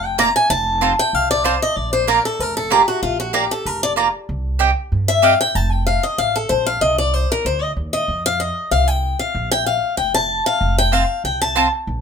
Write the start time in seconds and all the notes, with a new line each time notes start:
Already playing: F1
0.05 G5
0.18 A#3 F4 D5 A#5
0.36 G#5
0.50 F1 A5
0.81 C4 F4 C5 A5
0.99 G5
1.13 C2 F5
1.31 D5
1.44 C4 F4 C5 A5
1.62 D#5
1.77 A#1 D5
1.93 C5
2.07 A#3 F4 A#4 D5 A#5
2.25 A4
2.39 F1 A#4
2.57 A4
2.70 A#3 F4 G4 D5 A#5
2.88 F#4
3.03 A#1 F4
3.20 F#4
3.33 A#3 F4 G4 D5 A#5
3.51 A4
3.66 F1 A#4
3.83 D5
3.96 A#3 F4 D5 A#5
4.29 C2
4.59 C4 G4 D#5 G5
4.92 G2
5.08 E5
5.22 C4 G4 D#5 F5 G5
5.41 G5
5.55 F1 A5
5.72 G5
5.87 F5
6.03 D#5
6.18 A1 F5
6.36 A4
6.49 A#1 C5
6.66 F5
6.81 C2 D#5
6.98 D5
7.14 C5
7.32 A#4
7.45 D2 C5
7.62 D#5
7.77 D#2
7.93 D#5
8.08 F2
8.26 F5
8.40 D#5
8.71 C2 F5
8.88 G5
9.19 F5
9.35 A#1
9.51 G5
9.66 F5
9.97 F1 G5
10.14 A5
10.46 F5
10.61 F1
10.78 G5
10.92 C4 F4 C5 F5 A5
11.24 C2 G5
11.42 A5
11.55 C4 F4 C5 A5
11.87 A#1